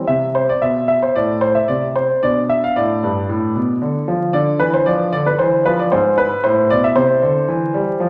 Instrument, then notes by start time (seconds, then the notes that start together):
grand piano
0.07 C3 E5
0.35 C5
0.49 D5
0.62 B2 E5
0.88 E5
1.02 C5
1.16 A2 D5
1.41 C5
1.55 E5
1.68 C3 D5
1.96 C5
2.23 B2 D4 D5
2.49 E5
2.64 F5
2.76 A2 D5
3.04 G2
3.29 A2
3.56 B2
3.82 D3
4.08 F3
4.33 D3 D4 D5
4.59 E3 B4
4.74 C5
4.86 F3 D5
5.13 D3 D5
5.26 B4
5.39 E3 C5
5.65 F3 B4
5.79 D5
5.92 G#2 C5
6.18 B4
6.44 A2 E4 C5
6.70 B2 D5
6.84 E5
6.96 C3 C5
7.22 D3
7.48 E3
7.74 G3
8.00 F3